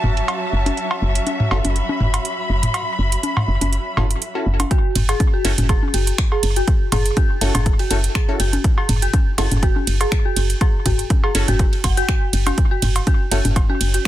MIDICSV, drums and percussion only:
0, 0, Header, 1, 2, 480
1, 0, Start_track
1, 0, Key_signature, 3, "minor"
1, 0, Tempo, 491803
1, 755, Time_signature, 4, 2, 24, 8
1, 13740, End_track
2, 0, Start_track
2, 0, Title_t, "Drums"
2, 36, Note_on_c, 9, 45, 75
2, 133, Note_off_c, 9, 45, 0
2, 166, Note_on_c, 9, 42, 49
2, 264, Note_off_c, 9, 42, 0
2, 275, Note_on_c, 9, 56, 60
2, 276, Note_on_c, 9, 42, 38
2, 373, Note_off_c, 9, 42, 0
2, 373, Note_off_c, 9, 56, 0
2, 646, Note_on_c, 9, 42, 49
2, 646, Note_on_c, 9, 63, 71
2, 744, Note_off_c, 9, 42, 0
2, 744, Note_off_c, 9, 63, 0
2, 755, Note_on_c, 9, 42, 35
2, 853, Note_off_c, 9, 42, 0
2, 886, Note_on_c, 9, 56, 63
2, 984, Note_off_c, 9, 56, 0
2, 1126, Note_on_c, 9, 42, 49
2, 1224, Note_off_c, 9, 42, 0
2, 1236, Note_on_c, 9, 42, 37
2, 1236, Note_on_c, 9, 63, 53
2, 1333, Note_off_c, 9, 42, 0
2, 1333, Note_off_c, 9, 63, 0
2, 1366, Note_on_c, 9, 45, 77
2, 1464, Note_off_c, 9, 45, 0
2, 1475, Note_on_c, 9, 56, 59
2, 1573, Note_off_c, 9, 56, 0
2, 1606, Note_on_c, 9, 42, 46
2, 1606, Note_on_c, 9, 63, 55
2, 1704, Note_off_c, 9, 42, 0
2, 1704, Note_off_c, 9, 63, 0
2, 1715, Note_on_c, 9, 42, 39
2, 1813, Note_off_c, 9, 42, 0
2, 1846, Note_on_c, 9, 63, 76
2, 1944, Note_off_c, 9, 63, 0
2, 1956, Note_on_c, 9, 45, 78
2, 2053, Note_off_c, 9, 45, 0
2, 2086, Note_on_c, 9, 56, 58
2, 2087, Note_on_c, 9, 42, 48
2, 2184, Note_off_c, 9, 42, 0
2, 2184, Note_off_c, 9, 56, 0
2, 2196, Note_on_c, 9, 42, 39
2, 2293, Note_off_c, 9, 42, 0
2, 2566, Note_on_c, 9, 42, 50
2, 2566, Note_on_c, 9, 45, 86
2, 2664, Note_off_c, 9, 42, 0
2, 2664, Note_off_c, 9, 45, 0
2, 2675, Note_on_c, 9, 56, 57
2, 2676, Note_on_c, 9, 42, 35
2, 2773, Note_off_c, 9, 42, 0
2, 2773, Note_off_c, 9, 56, 0
2, 3047, Note_on_c, 9, 42, 47
2, 3144, Note_off_c, 9, 42, 0
2, 3156, Note_on_c, 9, 42, 38
2, 3156, Note_on_c, 9, 63, 55
2, 3253, Note_off_c, 9, 42, 0
2, 3253, Note_off_c, 9, 63, 0
2, 3286, Note_on_c, 9, 45, 73
2, 3286, Note_on_c, 9, 56, 58
2, 3384, Note_off_c, 9, 45, 0
2, 3384, Note_off_c, 9, 56, 0
2, 3527, Note_on_c, 9, 42, 49
2, 3527, Note_on_c, 9, 63, 55
2, 3624, Note_off_c, 9, 63, 0
2, 3625, Note_off_c, 9, 42, 0
2, 3636, Note_on_c, 9, 42, 39
2, 3733, Note_off_c, 9, 42, 0
2, 3876, Note_on_c, 9, 45, 69
2, 3876, Note_on_c, 9, 56, 59
2, 3973, Note_off_c, 9, 45, 0
2, 3973, Note_off_c, 9, 56, 0
2, 4007, Note_on_c, 9, 42, 47
2, 4104, Note_off_c, 9, 42, 0
2, 4116, Note_on_c, 9, 42, 37
2, 4213, Note_off_c, 9, 42, 0
2, 4487, Note_on_c, 9, 42, 49
2, 4487, Note_on_c, 9, 56, 60
2, 4487, Note_on_c, 9, 63, 73
2, 4584, Note_off_c, 9, 42, 0
2, 4584, Note_off_c, 9, 56, 0
2, 4584, Note_off_c, 9, 63, 0
2, 4596, Note_on_c, 9, 36, 116
2, 4596, Note_on_c, 9, 42, 43
2, 4694, Note_off_c, 9, 36, 0
2, 4694, Note_off_c, 9, 42, 0
2, 4836, Note_on_c, 9, 42, 94
2, 4836, Note_on_c, 9, 45, 83
2, 4836, Note_on_c, 9, 51, 86
2, 4933, Note_off_c, 9, 42, 0
2, 4933, Note_off_c, 9, 45, 0
2, 4933, Note_off_c, 9, 51, 0
2, 4967, Note_on_c, 9, 42, 56
2, 4967, Note_on_c, 9, 56, 70
2, 5064, Note_off_c, 9, 42, 0
2, 5064, Note_off_c, 9, 56, 0
2, 5076, Note_on_c, 9, 36, 122
2, 5076, Note_on_c, 9, 42, 43
2, 5076, Note_on_c, 9, 63, 56
2, 5173, Note_off_c, 9, 42, 0
2, 5173, Note_off_c, 9, 63, 0
2, 5174, Note_off_c, 9, 36, 0
2, 5316, Note_on_c, 9, 42, 97
2, 5316, Note_on_c, 9, 51, 87
2, 5413, Note_off_c, 9, 42, 0
2, 5413, Note_off_c, 9, 51, 0
2, 5446, Note_on_c, 9, 42, 55
2, 5447, Note_on_c, 9, 45, 87
2, 5447, Note_on_c, 9, 63, 54
2, 5544, Note_off_c, 9, 42, 0
2, 5544, Note_off_c, 9, 45, 0
2, 5544, Note_off_c, 9, 63, 0
2, 5556, Note_on_c, 9, 36, 121
2, 5556, Note_on_c, 9, 42, 44
2, 5556, Note_on_c, 9, 56, 72
2, 5653, Note_off_c, 9, 36, 0
2, 5653, Note_off_c, 9, 42, 0
2, 5654, Note_off_c, 9, 56, 0
2, 5687, Note_on_c, 9, 63, 76
2, 5784, Note_off_c, 9, 63, 0
2, 5795, Note_on_c, 9, 42, 94
2, 5795, Note_on_c, 9, 51, 85
2, 5893, Note_off_c, 9, 42, 0
2, 5893, Note_off_c, 9, 51, 0
2, 5926, Note_on_c, 9, 42, 54
2, 6024, Note_off_c, 9, 42, 0
2, 6035, Note_on_c, 9, 26, 114
2, 6035, Note_on_c, 9, 42, 45
2, 6036, Note_on_c, 9, 36, 123
2, 6133, Note_off_c, 9, 26, 0
2, 6133, Note_off_c, 9, 36, 0
2, 6133, Note_off_c, 9, 42, 0
2, 6166, Note_on_c, 9, 56, 71
2, 6264, Note_off_c, 9, 56, 0
2, 6275, Note_on_c, 9, 42, 93
2, 6275, Note_on_c, 9, 51, 81
2, 6373, Note_off_c, 9, 42, 0
2, 6373, Note_off_c, 9, 51, 0
2, 6406, Note_on_c, 9, 42, 56
2, 6504, Note_off_c, 9, 42, 0
2, 6515, Note_on_c, 9, 42, 38
2, 6516, Note_on_c, 9, 36, 127
2, 6613, Note_off_c, 9, 36, 0
2, 6613, Note_off_c, 9, 42, 0
2, 6755, Note_on_c, 9, 42, 99
2, 6755, Note_on_c, 9, 51, 83
2, 6756, Note_on_c, 9, 45, 85
2, 6756, Note_on_c, 9, 56, 68
2, 6853, Note_off_c, 9, 42, 0
2, 6853, Note_off_c, 9, 45, 0
2, 6853, Note_off_c, 9, 51, 0
2, 6853, Note_off_c, 9, 56, 0
2, 6886, Note_on_c, 9, 42, 53
2, 6984, Note_off_c, 9, 42, 0
2, 6995, Note_on_c, 9, 42, 42
2, 6996, Note_on_c, 9, 36, 127
2, 6996, Note_on_c, 9, 63, 57
2, 7093, Note_off_c, 9, 36, 0
2, 7093, Note_off_c, 9, 42, 0
2, 7093, Note_off_c, 9, 63, 0
2, 7236, Note_on_c, 9, 42, 99
2, 7236, Note_on_c, 9, 51, 84
2, 7333, Note_off_c, 9, 42, 0
2, 7333, Note_off_c, 9, 51, 0
2, 7366, Note_on_c, 9, 42, 54
2, 7366, Note_on_c, 9, 45, 88
2, 7366, Note_on_c, 9, 56, 67
2, 7366, Note_on_c, 9, 63, 60
2, 7464, Note_off_c, 9, 42, 0
2, 7464, Note_off_c, 9, 45, 0
2, 7464, Note_off_c, 9, 56, 0
2, 7464, Note_off_c, 9, 63, 0
2, 7475, Note_on_c, 9, 42, 45
2, 7476, Note_on_c, 9, 36, 126
2, 7573, Note_off_c, 9, 42, 0
2, 7574, Note_off_c, 9, 36, 0
2, 7607, Note_on_c, 9, 51, 47
2, 7704, Note_off_c, 9, 51, 0
2, 7716, Note_on_c, 9, 42, 97
2, 7716, Note_on_c, 9, 51, 81
2, 7813, Note_off_c, 9, 42, 0
2, 7813, Note_off_c, 9, 51, 0
2, 7846, Note_on_c, 9, 42, 54
2, 7944, Note_off_c, 9, 42, 0
2, 7956, Note_on_c, 9, 26, 116
2, 7956, Note_on_c, 9, 36, 127
2, 7956, Note_on_c, 9, 42, 42
2, 7956, Note_on_c, 9, 56, 63
2, 8053, Note_off_c, 9, 26, 0
2, 8053, Note_off_c, 9, 42, 0
2, 8053, Note_off_c, 9, 56, 0
2, 8054, Note_off_c, 9, 36, 0
2, 8196, Note_on_c, 9, 42, 98
2, 8196, Note_on_c, 9, 51, 84
2, 8293, Note_off_c, 9, 42, 0
2, 8293, Note_off_c, 9, 51, 0
2, 8326, Note_on_c, 9, 42, 55
2, 8327, Note_on_c, 9, 63, 78
2, 8424, Note_off_c, 9, 42, 0
2, 8424, Note_off_c, 9, 63, 0
2, 8436, Note_on_c, 9, 36, 127
2, 8436, Note_on_c, 9, 42, 39
2, 8533, Note_off_c, 9, 36, 0
2, 8533, Note_off_c, 9, 42, 0
2, 8566, Note_on_c, 9, 56, 67
2, 8664, Note_off_c, 9, 56, 0
2, 8675, Note_on_c, 9, 45, 85
2, 8676, Note_on_c, 9, 42, 96
2, 8676, Note_on_c, 9, 51, 83
2, 8773, Note_off_c, 9, 42, 0
2, 8773, Note_off_c, 9, 45, 0
2, 8773, Note_off_c, 9, 51, 0
2, 8806, Note_on_c, 9, 42, 54
2, 8904, Note_off_c, 9, 42, 0
2, 8916, Note_on_c, 9, 36, 127
2, 8916, Note_on_c, 9, 42, 42
2, 8916, Note_on_c, 9, 63, 61
2, 9013, Note_off_c, 9, 36, 0
2, 9013, Note_off_c, 9, 42, 0
2, 9013, Note_off_c, 9, 63, 0
2, 9155, Note_on_c, 9, 56, 66
2, 9156, Note_on_c, 9, 42, 97
2, 9156, Note_on_c, 9, 51, 83
2, 9253, Note_off_c, 9, 42, 0
2, 9253, Note_off_c, 9, 51, 0
2, 9253, Note_off_c, 9, 56, 0
2, 9286, Note_on_c, 9, 45, 84
2, 9286, Note_on_c, 9, 63, 59
2, 9287, Note_on_c, 9, 42, 53
2, 9384, Note_off_c, 9, 42, 0
2, 9384, Note_off_c, 9, 45, 0
2, 9384, Note_off_c, 9, 63, 0
2, 9396, Note_on_c, 9, 36, 121
2, 9396, Note_on_c, 9, 42, 42
2, 9493, Note_off_c, 9, 36, 0
2, 9493, Note_off_c, 9, 42, 0
2, 9526, Note_on_c, 9, 63, 84
2, 9624, Note_off_c, 9, 63, 0
2, 9636, Note_on_c, 9, 42, 94
2, 9636, Note_on_c, 9, 51, 81
2, 9733, Note_off_c, 9, 42, 0
2, 9733, Note_off_c, 9, 51, 0
2, 9766, Note_on_c, 9, 42, 52
2, 9766, Note_on_c, 9, 56, 62
2, 9864, Note_off_c, 9, 42, 0
2, 9864, Note_off_c, 9, 56, 0
2, 9876, Note_on_c, 9, 26, 104
2, 9876, Note_on_c, 9, 36, 127
2, 9876, Note_on_c, 9, 42, 40
2, 9973, Note_off_c, 9, 26, 0
2, 9973, Note_off_c, 9, 36, 0
2, 9973, Note_off_c, 9, 42, 0
2, 10116, Note_on_c, 9, 42, 103
2, 10116, Note_on_c, 9, 51, 84
2, 10213, Note_off_c, 9, 42, 0
2, 10213, Note_off_c, 9, 51, 0
2, 10247, Note_on_c, 9, 42, 53
2, 10344, Note_off_c, 9, 42, 0
2, 10356, Note_on_c, 9, 36, 127
2, 10356, Note_on_c, 9, 42, 38
2, 10356, Note_on_c, 9, 56, 63
2, 10453, Note_off_c, 9, 36, 0
2, 10453, Note_off_c, 9, 42, 0
2, 10453, Note_off_c, 9, 56, 0
2, 10595, Note_on_c, 9, 42, 94
2, 10595, Note_on_c, 9, 45, 81
2, 10595, Note_on_c, 9, 51, 78
2, 10596, Note_on_c, 9, 36, 64
2, 10693, Note_off_c, 9, 36, 0
2, 10693, Note_off_c, 9, 42, 0
2, 10693, Note_off_c, 9, 45, 0
2, 10693, Note_off_c, 9, 51, 0
2, 10726, Note_on_c, 9, 42, 52
2, 10824, Note_off_c, 9, 42, 0
2, 10835, Note_on_c, 9, 42, 39
2, 10835, Note_on_c, 9, 63, 57
2, 10836, Note_on_c, 9, 36, 127
2, 10933, Note_off_c, 9, 36, 0
2, 10933, Note_off_c, 9, 42, 0
2, 10933, Note_off_c, 9, 63, 0
2, 10966, Note_on_c, 9, 56, 60
2, 11064, Note_off_c, 9, 56, 0
2, 11076, Note_on_c, 9, 42, 98
2, 11076, Note_on_c, 9, 51, 88
2, 11173, Note_off_c, 9, 42, 0
2, 11173, Note_off_c, 9, 51, 0
2, 11206, Note_on_c, 9, 42, 51
2, 11206, Note_on_c, 9, 45, 84
2, 11206, Note_on_c, 9, 63, 61
2, 11304, Note_off_c, 9, 42, 0
2, 11304, Note_off_c, 9, 45, 0
2, 11304, Note_off_c, 9, 63, 0
2, 11316, Note_on_c, 9, 36, 125
2, 11316, Note_on_c, 9, 42, 40
2, 11413, Note_off_c, 9, 36, 0
2, 11413, Note_off_c, 9, 42, 0
2, 11447, Note_on_c, 9, 51, 49
2, 11544, Note_off_c, 9, 51, 0
2, 11556, Note_on_c, 9, 36, 65
2, 11556, Note_on_c, 9, 42, 94
2, 11556, Note_on_c, 9, 51, 85
2, 11556, Note_on_c, 9, 56, 63
2, 11653, Note_off_c, 9, 36, 0
2, 11653, Note_off_c, 9, 42, 0
2, 11653, Note_off_c, 9, 51, 0
2, 11653, Note_off_c, 9, 56, 0
2, 11687, Note_on_c, 9, 42, 50
2, 11784, Note_off_c, 9, 42, 0
2, 11796, Note_on_c, 9, 26, 106
2, 11796, Note_on_c, 9, 36, 127
2, 11796, Note_on_c, 9, 42, 40
2, 11893, Note_off_c, 9, 26, 0
2, 11893, Note_off_c, 9, 36, 0
2, 11893, Note_off_c, 9, 42, 0
2, 12035, Note_on_c, 9, 42, 96
2, 12035, Note_on_c, 9, 51, 83
2, 12133, Note_off_c, 9, 42, 0
2, 12133, Note_off_c, 9, 51, 0
2, 12166, Note_on_c, 9, 42, 53
2, 12167, Note_on_c, 9, 56, 62
2, 12167, Note_on_c, 9, 63, 83
2, 12264, Note_off_c, 9, 42, 0
2, 12264, Note_off_c, 9, 56, 0
2, 12264, Note_off_c, 9, 63, 0
2, 12275, Note_on_c, 9, 42, 38
2, 12276, Note_on_c, 9, 36, 123
2, 12373, Note_off_c, 9, 36, 0
2, 12373, Note_off_c, 9, 42, 0
2, 12515, Note_on_c, 9, 42, 94
2, 12515, Note_on_c, 9, 45, 78
2, 12515, Note_on_c, 9, 51, 88
2, 12613, Note_off_c, 9, 42, 0
2, 12613, Note_off_c, 9, 45, 0
2, 12613, Note_off_c, 9, 51, 0
2, 12646, Note_on_c, 9, 42, 52
2, 12647, Note_on_c, 9, 56, 66
2, 12744, Note_off_c, 9, 42, 0
2, 12744, Note_off_c, 9, 56, 0
2, 12755, Note_on_c, 9, 42, 40
2, 12756, Note_on_c, 9, 36, 121
2, 12756, Note_on_c, 9, 63, 56
2, 12853, Note_off_c, 9, 36, 0
2, 12853, Note_off_c, 9, 42, 0
2, 12853, Note_off_c, 9, 63, 0
2, 12996, Note_on_c, 9, 42, 98
2, 12996, Note_on_c, 9, 51, 88
2, 13093, Note_off_c, 9, 42, 0
2, 13093, Note_off_c, 9, 51, 0
2, 13126, Note_on_c, 9, 42, 51
2, 13126, Note_on_c, 9, 45, 79
2, 13126, Note_on_c, 9, 63, 59
2, 13224, Note_off_c, 9, 42, 0
2, 13224, Note_off_c, 9, 45, 0
2, 13224, Note_off_c, 9, 63, 0
2, 13235, Note_on_c, 9, 56, 64
2, 13236, Note_on_c, 9, 36, 120
2, 13236, Note_on_c, 9, 42, 43
2, 13333, Note_off_c, 9, 42, 0
2, 13333, Note_off_c, 9, 56, 0
2, 13334, Note_off_c, 9, 36, 0
2, 13366, Note_on_c, 9, 63, 82
2, 13464, Note_off_c, 9, 63, 0
2, 13476, Note_on_c, 9, 42, 96
2, 13476, Note_on_c, 9, 51, 86
2, 13573, Note_off_c, 9, 42, 0
2, 13573, Note_off_c, 9, 51, 0
2, 13606, Note_on_c, 9, 42, 52
2, 13704, Note_off_c, 9, 42, 0
2, 13740, End_track
0, 0, End_of_file